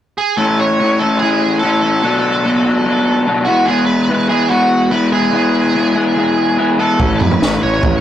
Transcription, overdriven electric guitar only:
0.37 0.99 A2 medium
0.37 0.78 E3 medium
0.37 0.80 A3 medium
0.37 0.80 C#4 medium
0.37 0.81 E4 medium
0.79 1.20 E3 medium
0.79 1.02 A3 medium
0.79 1.00 C#4 medium
0.79 0.99 E4 medium
1.01 1.21 A3 soft
1.01 1.22 C#4 medium
1.01 1.23 E4 medium
1.22 1.62 E3 medium
1.22 1.63 A3 medium
1.22 1.64 C#4 medium
1.22 1.64 E4 medium
1.63 2.02 A2 medium
1.63 2.03 E3 medium
1.63 1.84 A3 medium
1.63 1.83 C#4 medium
1.63 1.81 E4 medium
1.83 2.03 A3 medium
1.83 2.03 C#4 medium
1.83 2.02 E4 medium
2.04 2.65 B2 medium
2.04 2.44 F#3 medium
2.04 2.46 B3 medium
2.04 2.46 D4 medium
2.04 2.47 F#4 medium
2.44 2.85 F#3 medium
2.44 2.67 B3 medium
2.44 2.66 D4 medium
2.44 2.65 F#4 medium
2.65 2.86 B3 soft
2.65 2.87 D4 medium
2.65 2.88 F#4 medium
2.86 3.27 F#3 medium
2.86 3.27 B3 medium
2.86 3.27 D4 medium
2.86 3.29 F#4 medium
3.27 3.46 B2 medium
3.27 3.50 F#3 medium
3.27 3.48 B3 medium
3.27 3.47 D4 medium
3.27 3.47 F#4 medium
3.47 3.67 E3 medium
3.47 3.68 G#3 medium
3.47 3.69 B3 medium
3.47 3.70 E4 medium
3.67 4.09 E3 medium
3.67 4.10 G#3 medium
3.67 4.11 B3 medium
3.67 4.11 E4 medium
4.09 4.49 E3 medium
4.09 4.31 G#3 medium
4.09 4.30 B3 medium
4.09 4.29 E4 medium
4.29 4.50 G#3 medium
4.29 4.50 B3 medium
4.29 4.52 E4 medium
4.50 4.91 E3 medium
4.50 4.91 G#3 medium
4.50 4.92 B3 medium
4.50 4.93 E4 medium
4.91 5.32 E3 medium
4.91 5.14 G#3 medium
4.91 5.13 B3 medium
4.91 5.12 E4 loud
5.12 5.33 G#3 medium
5.12 5.33 B3 medium
5.12 5.34 E4 medium
5.32 5.74 E3 medium
5.32 5.75 G#3 medium
5.32 5.75 B3 loud
5.32 5.77 E4 medium
5.74 6.15 E3 medium
5.74 5.98 G#3 medium
5.74 5.95 B3 medium
5.74 5.95 E4 medium
5.96 6.16 G#3 medium
5.96 6.17 B3 medium
5.96 6.17 E4 medium
6.16 6.56 E3 medium
6.16 6.57 G#3 medium
6.16 6.58 B3 medium
6.16 6.58 E4 medium
6.58 6.98 E3 medium
6.58 6.79 G#3 medium
6.58 6.78 B3 medium
6.58 6.77 E4 medium
6.78 6.99 G#3 medium
6.78 6.99 B3 medium
6.78 6.98 E4 medium
6.98 7.61 A2 medium
6.98 7.39 E3 medium
6.98 7.41 A3 medium
6.98 7.41 C#4 medium
6.98 7.42 E4 medium
7.40 7.81 E3 medium
7.40 7.63 A3 medium
7.40 7.62 C#4 medium
7.40 7.60 E4 medium
7.61 7.82 A3 soft
7.61 7.83 C#4 medium
7.61 7.83 E4 medium
7.82 8.01 E3 medium
7.82 8.01 A3 medium
7.82 8.01 C#4 medium
7.82 8.01 E4 medium

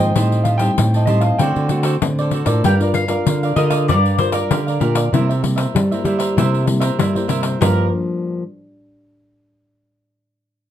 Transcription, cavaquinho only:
0.00 0.14 G#4 medium
0.00 0.14 C5 medium
0.00 0.13 D#5 medium
0.16 0.45 G4 medium
0.16 0.45 C5 medium
0.16 0.46 D#5 medium
0.16 0.47 A5 medium
0.46 0.59 G4 soft
0.46 0.60 C5 soft
0.46 0.60 D#5 medium
0.46 0.60 A5 soft
0.60 0.70 G4 medium
0.60 0.71 C5 medium
0.60 0.71 D#5 medium
0.60 0.71 A5 medium
0.95 1.07 C5 soft
0.95 1.08 D#5 soft
0.95 1.08 A5 soft
1.08 1.23 G4 medium
1.08 1.23 C5 medium
1.08 1.22 D#5 medium
1.08 1.21 A5 medium
1.22 1.39 C5 soft
1.22 1.38 D#5 soft
1.22 1.38 A5 soft
1.40 1.68 F#4 medium
1.40 1.69 A4 medium
1.40 1.70 C5 medium
1.40 1.71 D5 medium
1.69 1.83 F#4 soft
1.69 1.84 A4 medium
1.69 1.84 C5 medium
1.69 1.84 D5 medium
1.84 1.95 F#4 medium
1.84 1.95 A4 medium
1.84 1.95 C5 medium
1.84 1.95 D5 medium
2.19 2.32 A4 soft
2.19 2.33 C5 soft
2.19 2.33 D5 soft
2.32 2.47 F#4 soft
2.32 2.48 A4 soft
2.32 2.47 C5 medium
2.32 2.45 D5 soft
2.47 2.63 A4 medium
2.47 2.63 C5 medium
2.47 2.62 D5 medium
2.65 2.79 G4 medium
2.65 2.80 A#4 medium
2.65 2.80 D5 medium
2.65 2.80 F5 medium
2.81 2.94 A#4 soft
2.81 2.94 D5 soft
2.81 2.95 F5 soft
2.95 muted cavaquinho stroke soft
3.09 3.41 A#4 soft
3.09 3.40 D5 soft
3.09 3.40 F5 medium
3.43 3.56 A#4 soft
3.43 3.56 D5 soft
3.43 3.57 F5 soft
3.56 3.71 G4 soft
3.56 3.71 A#4 medium
3.56 3.70 D5 soft
3.56 3.69 F5 medium
3.70 3.87 A#4 soft
3.70 3.87 D5 medium
3.70 3.86 F5 medium
3.89 4.18 G4 medium
3.89 4.18 A#4 medium
3.89 4.18 D5 medium
3.89 4.19 F5 medium
4.19 muted cavaquinho stroke soft
4.32 4.49 A#4 medium
4.32 4.49 D5 medium
4.32 4.48 F5 medium
4.51 4.65 G4 soft
4.51 4.66 A#4 soft
4.51 4.66 D5 medium
4.51 4.66 F5 medium
4.67 4.80 A#4 soft
4.67 4.81 D5 soft
4.67 4.81 F5 soft
4.80 4.95 G4 medium
4.80 4.96 A#4 medium
4.80 4.95 D5 medium
4.80 4.94 F5 medium
4.95 5.12 A#4 soft
4.95 5.11 D5 soft
4.95 5.11 F5 soft
5.13 5.27 E4 medium
5.13 5.28 A#4 medium
5.13 5.28 C5 medium
5.13 5.28 E5 medium
5.29 5.42 A#4 soft
5.29 5.42 C5 soft
5.29 5.43 E5 medium
5.43 muted cavaquinho stroke soft
5.56 5.89 A#4 soft
5.56 5.88 C5 medium
5.56 5.88 E5 medium
5.91 6.04 A#4 soft
5.91 6.05 C5 soft
5.91 6.05 E5 soft
6.05 6.20 E4 soft
6.05 6.20 A#4 medium
6.05 6.18 C5 medium
6.05 6.17 E5 medium
6.19 6.36 A#4 medium
6.19 6.35 C5 medium
6.19 6.34 E5 medium
6.37 6.65 E4 medium
6.37 6.65 A#4 medium
6.37 6.66 C5 medium
6.37 6.66 E5 medium
6.66 muted cavaquinho stroke soft
6.80 6.97 A#4 medium
6.80 6.97 C5 medium
6.80 6.96 E5 medium
6.99 7.13 E4 medium
6.99 7.14 A#4 medium
6.99 7.14 C5 medium
6.99 7.14 E5 medium
7.15 7.28 A#4 soft
7.15 7.29 C5 soft
7.15 7.29 E5 medium
7.28 7.43 E4 medium
7.28 7.44 A#4 medium
7.28 7.43 C5 medium
7.28 7.41 E5 medium
7.43 7.60 A#4 soft
7.43 7.59 C5 soft
7.43 7.58 E5 medium
7.61 7.86 G4 medium
7.61 7.86 A#4 medium
7.61 7.87 D5 medium
7.61 7.87 F5 medium

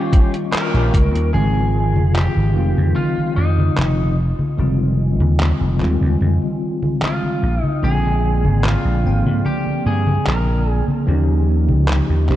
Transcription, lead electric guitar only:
0.52 1.30 A#4 loud
1.34 2.14 G#4 loud
2.15 2.99 G4 medium
2.96 3.36 F4 medium
3.36 4.14 D#4 medium
7.04 7.64 F4 medium
7.64 7.87 D#4 medium
7.84 8.67 G#4 medium
8.65 9.48 F4 medium
9.46 9.83 G4 medium
9.87 10.26 G#4 medium
10.27 10.71 A#4 medium
10.71 10.84 G#4 medium

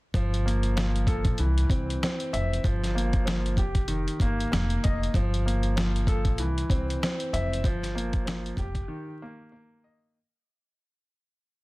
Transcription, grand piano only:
0.15 0.75 F3 loud
0.46 1.39 A#3 medium
0.76 1.39 F3 medium
1.08 1.39 A4 medium
1.39 2.64 E3 medium
1.70 2.02 C4 medium
2.04 2.65 C4 medium
2.33 2.64 E5 medium
2.64 3.24 F3 loud
2.95 3.58 A#3 medium
3.25 3.57 F3 medium
3.58 4.83 G4 medium
3.88 5.13 D#3 medium
4.22 4.50 A#3 medium
4.52 5.14 A#3 medium
4.84 5.15 D#5 medium
5.15 5.75 F3 loud
5.46 6.39 A#3 medium
5.77 6.39 F3 medium
6.08 6.39 A4 medium
6.39 7.64 E3 medium
6.70 7.02 C4 medium
7.04 7.65 C4 medium
7.33 7.64 E5 medium
7.65 8.24 F3 medium
7.95 8.58 A#3 medium
8.26 8.57 F3 medium
8.58 9.83 G4 medium
8.88 10.14 D#3 medium
9.22 9.50 A#3 medium
9.52 10.14 A#3 medium
9.84 10.15 D#5 medium

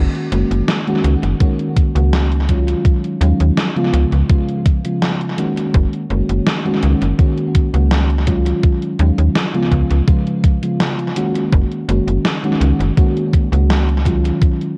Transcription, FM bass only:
0.32 0.44 F#1 loud
0.51 0.62 F#1 medium
1.04 1.16 C#2 medium
1.23 1.34 F#1 medium
1.95 2.75 C#2 medium
3.21 3.33 D#2 loud
3.40 3.51 D#2 medium
3.93 4.05 C#2 medium
4.12 4.23 C#2 medium
5.74 5.86 F#1 loud
6.10 6.22 F#1 loud
6.30 6.40 F#1 medium
6.83 6.95 C#2 medium
7.02 7.13 F#1 medium
7.74 8.53 C#2 medium
8.99 9.11 D#2 loud
9.18 9.29 D#2 medium
9.72 9.84 C#2 medium
9.91 10.02 C#2 medium
11.52 11.64 F#1 loud
11.89 12.01 F#1 loud
12.07 12.18 F#1 medium
12.61 12.73 C#2 medium
12.80 12.91 F#1 medium
13.52 14.31 C#2 medium

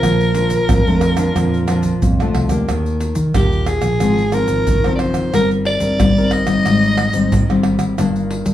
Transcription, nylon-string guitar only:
0.00 0.67 A#2 medium
0.00 0.30 F3 medium
0.00 0.30 D4 medium
0.35 0.80 F3 medium
0.35 0.81 D4 medium
0.70 1.33 F2 medium
0.87 1.15 F3 medium
0.87 1.15 A3 medium
0.87 1.15 D4 medium
1.17 1.63 F3 medium
1.17 1.63 D4 medium
1.37 2.00 A#2 medium
1.69 2.00 F3 medium
1.69 2.01 D4 medium
2.03 2.66 F2 medium
2.21 2.48 F3 medium
2.21 2.48 A3 medium
2.21 2.48 D4 medium
2.51 2.96 A#3 medium
2.51 2.96 D4 medium
2.51 2.96 G4 medium
2.70 3.32 D#3 medium
3.36 3.99 A#2 medium
3.36 3.78 A#3 soft
3.36 3.79 D4 soft
3.36 3.79 G4 medium
4.02 4.65 G#2 medium
4.02 4.21 F3 soft
4.02 4.21 C4 soft
4.02 4.22 D#4 medium
4.33 4.78 F3 medium
4.33 4.79 C4 medium
4.33 4.79 D#4 medium
4.68 5.31 D#3 medium
4.85 5.29 F3 medium
4.85 5.29 C4 medium
4.85 5.30 D#4 medium
5.34 5.97 G3 medium
5.34 5.78 C4 medium
5.34 5.78 D#4 medium
5.34 5.79 A#4 medium
5.81 6.10 C4 soft
5.81 6.10 D#4 soft
5.81 6.11 A#4 medium
6.00 6.46 G3 medium
6.18 6.45 C4 medium
6.18 6.45 D#4 medium
6.18 6.45 A#4 medium
6.47 7.09 G3 medium
6.47 7.10 C4 medium
6.47 7.10 D#4 medium
6.66 7.29 G#2 medium
7.13 7.43 G3 medium
7.13 7.43 C4 medium
7.13 7.43 D#4 medium
7.33 7.96 D#3 medium
7.50 7.94 G3 medium
7.50 7.94 C4 medium
7.50 7.95 D#4 medium
7.99 8.54 G2 medium
7.99 8.54 D#3 medium
7.99 8.54 A#3 medium
7.99 8.54 D4 medium

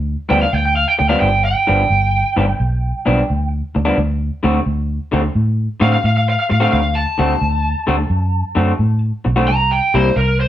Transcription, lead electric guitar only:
0.30 0.41 G5 medium
0.42 0.50 F5 medium
0.54 0.64 G5 medium
0.65 0.74 G5 medium
0.76 0.88 F5 medium
0.88 0.92 G5 medium
0.99 1.09 G5 medium
1.09 1.18 F5 medium
1.20 1.43 G5 medium
1.45 3.48 G5 medium
5.82 5.92 F5 loud
5.93 6.02 F5 medium
6.06 6.16 F5 medium
6.17 6.26 F5 medium
6.30 6.39 F5 loud
6.40 6.44 F5 medium
6.51 6.61 F5 medium
6.62 6.71 F5 medium
6.72 6.95 F5 medium
6.95 8.98 A5 medium
9.48 9.70 A#5 loud
9.71 9.94 G5 medium
9.95 10.17 C5 loud
10.17 10.39 A#4 medium
10.40 10.48 C5 medium

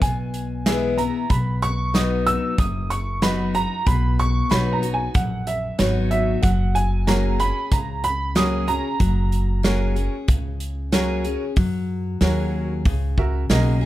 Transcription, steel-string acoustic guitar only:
0.02 1.24 B2 medium
0.66 0.97 E3 medium
0.66 0.97 G#3 medium
0.66 0.97 B3 medium
0.66 0.96 E4 loud
0.98 1.29 B3 soft
0.98 1.29 E4 soft
1.30 2.52 B2 medium
1.94 2.55 F#3 medium
1.94 2.56 B3 medium
1.94 2.56 D#4 medium
1.94 2.56 F#4 medium
2.58 3.80 F#2 medium
3.22 3.53 F#3 medium
3.22 3.54 B3 medium
3.22 3.54 D#4 medium
3.22 3.53 F#4 loud
3.54 3.86 D#4 soft
3.54 3.85 F#4 soft
3.86 5.09 B2 medium
4.50 4.81 F#3 medium
4.50 4.82 B3 medium
4.50 4.82 D#4 medium
4.50 4.81 F#4 medium
4.82 5.14 D#4 soft
4.82 5.13 F#4 medium
5.14 6.37 F#2 medium
5.79 6.40 F#3 medium
5.79 6.40 B3 medium
5.79 6.41 D#4 medium
5.79 6.41 F#4 loud
6.43 7.06 F#3 loud
7.07 7.38 F#3 medium
7.07 7.39 A#3 medium
7.07 7.39 C#4 medium
7.07 7.38 G#4 medium
7.40 7.71 C#4 soft
7.40 7.70 G#4 medium
7.72 8.94 C#3 medium
8.35 8.66 F#3 loud
8.35 8.67 A#3 medium
8.35 8.67 C#4 medium
8.35 8.66 G#4 medium
8.67 9.00 C#4 soft
8.67 8.99 G#4 medium
9.00 9.62 F#3 medium
9.63 9.95 F#3 medium
9.63 9.95 A#3 medium
9.63 9.96 C#4 medium
9.63 9.95 G#4 medium
9.96 10.28 C#4 soft
9.96 10.27 G#4 medium
10.28 11.50 C#3 medium
10.92 11.23 F#3 medium
10.92 11.24 A#3 medium
10.92 11.24 C#4 loud
10.92 11.23 G#4 loud
11.24 11.56 C#4 soft
11.24 11.55 G#4 medium
11.57 12.19 F#3 medium
12.21 12.82 F#3 medium
12.21 12.82 A#3 medium
12.21 12.83 C#4 medium
12.21 12.83 G#4 medium
12.85 13.86 C#3 medium
13.49 13.80 F#3 medium
13.49 13.81 A#3 medium
13.49 13.81 C#4 loud
13.49 13.80 G#4 loud
13.81 13.86 G#4 medium

